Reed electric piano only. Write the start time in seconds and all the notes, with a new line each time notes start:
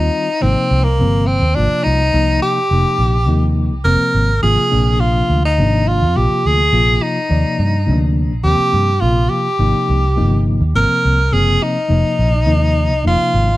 Already playing: D#3 G3 C4 F4
0.41 C3 F3 A#3 D#4
0.99 C3 F3 A#3 C4
1.54 C3 F3 A#3 F4
2.12 C3 F3 A#3 D#4
2.71 C3 F3 A#3 D#4
3.26 C3 F3 A#3 D#4
3.85 C3 F3 A#3 C4
4.42 C3 F3 A#3 F4
4.71 C3 F3 A#3 D4
5.58 C3 F3 A#3 D4
6.15 C3 F3 A#3 F4
6.72 C3 F3 A#3 F4
7.29 C3 F3 A#3 D5
7.86 C3 F3 A#3 D4
8.44 C3 F3 A#3 C4
9.01 C3 F3 A#3 F4
9.59 C3 F3 A#3 D#4
10.16 C3 F3 A#3 D#4
10.74 C3 F3 A#3 C4
11.32 C3 F3 A#3 C4
11.88 C3 F3 A#3 D#4
12.46 C3 F3 A#3 D#4
13.03 C3 F3 A#3 D#4